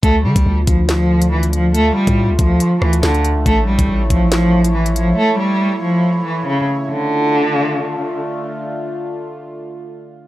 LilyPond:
<<
  \new Staff \with { instrumentName = "Analog synth pad" } { \time 4/4 \key d \minor \tempo 4 = 140 <d a f'>1~ | <d a f'>1 | <e' cis''>1~ | <e' cis''>1 |
<d a f'>1~ | <d a f'>1 | }
  \new Staff \with { instrumentName = "Cello" } { \clef bass \time 4/4 \key d \minor a8 g4 f8 f4 e8 f8 | a8 g4 f4 e8 d8 r8 | a8 g4 f8 f4 e8 f8 | a8 g4 f4 e8 cis8 r8 |
d2. r4 | r1 | }
  \new Staff \with { instrumentName = "808-style bass" } { \clef bass \time 4/4 \key d \minor d,8 d16 d,16 d,8 d,2~ d,8~ | d,8 r16 a,8 cis,16 d,8 r8 d,8 d,8. cis,16 | a,,8 bes,,16 a,,16 a,,8 a,,2~ a,,8 | r1 |
r1 | r1 | }
  \new DrumStaff \with { instrumentName = "Drums" } \drummode { \time 4/4 <hh bd>8. <hh bd>16 r8 <hh bd>8 <hc hh sn>8. hh16 r16 hh16 hh8 | hh8. <hh bd>16 r8 <hh bd>8 hh8 ss16 hh16 <hc sn>16 hh16 hh8 | <hh bd>8. <hh bd>16 r8 <hh bd>8 <hc hh sn>8. hh16 r16 hh16 hh8 | r4 r4 r4 r4 |
r4 r4 r4 r4 | r4 r4 r4 r4 | }
>>